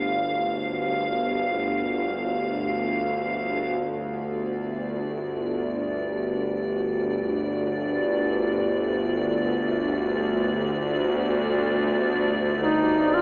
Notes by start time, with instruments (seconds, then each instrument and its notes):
Already playing: synth drone G1 D2, ambient pad F5
3.77 synth drone G1 D2, ambient pad D5
12.61 duduk D#4
13.14 duduk F4